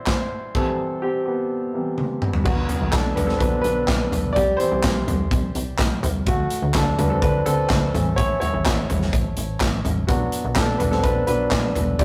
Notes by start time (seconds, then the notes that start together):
Already playing: C3 E3 G3 E4 F#4 G4 C5 D5 E5
0.06 E4 C5, kick, snare, clap
0.55 C3 E3 G3 C4 A4, kick, crash
1.02 C4 G4
1.26 B3 G4
1.73 C3 E3 G3
1.98 high tom
2.22 mid tom
2.33 floor tom
2.44 B1 D3 F#3 B3 F#4, kick, crash
2.69 closed hi-hat, floor tom
2.82 B1
2.91 B1 D4 A4, kick, snare, clap, closed hi-hat
3.15 B1 D4 B4, closed hi-hat, floor tom
3.27 C4 A4, snare
3.38 B1 D3 F#3 B3 D4 B4, kick, closed hi-hat
3.61 B1 D4 B4, closed hi-hat
3.88 B1, kick, snare, clap, closed hi-hat
4.12 B1, closed hi-hat, floor tom
4.33 C2 G4 D5, kick, closed hi-hat
4.57 E3 G3 C4 E4 C5, closed hi-hat
4.72 C2
4.83 C2, kick, snare, clap, closed hi-hat
5.07 C2, closed hi-hat, floor tom
5.31 C2, kick, closed hi-hat
5.55 C2, closed hi-hat
5.78 C2, kick, snare, clap, closed hi-hat
6.03 C2, closed hi-hat, floor tom
6.27 D2 A3 F#4, kick, closed hi-hat
6.50 closed hi-hat
6.62 D2
6.74 D2 D4 A4, kick, snare, clap, closed hi-hat
6.99 D2 F#3 A3 D4 B4, closed hi-hat, floor tom
7.10 C4 A4
7.22 D2 D4 B4, kick, closed hi-hat
7.46 D2 C4 A4, closed hi-hat
7.69 D2, kick, snare, clap, closed hi-hat
7.94 A1 E3 A3 C#4, closed hi-hat, floor tom
8.16 E4 C#5, kick, closed hi-hat
8.40 E4 C#5, closed hi-hat, floor tom
8.54 A1
8.65 A1, kick, snare, clap, closed hi-hat
8.90 A1, closed hi-hat, floor tom
9.02 snare
9.13 A1, kick, closed hi-hat
9.37 A1, closed hi-hat
9.60 A1, kick, snare, clap, closed hi-hat
9.85 A1, closed hi-hat, floor tom
10.07 B1 F#3 B3 D4 F#4, kick, closed hi-hat
10.32 closed hi-hat
10.45 B1
10.55 B1 D4 A4, kick, snare, clap, closed hi-hat
10.78 B1 D4 B4, closed hi-hat, floor tom
10.91 C4 A4, snare
11.03 B1 D4 B4, kick, closed hi-hat
11.27 B1 F#3 B3 D4 B4, closed hi-hat
11.51 B1, kick, snare, clap, closed hi-hat
11.75 B1, closed hi-hat, floor tom
11.99 C2 G3 C4 E4 G4 D5, kick, closed hi-hat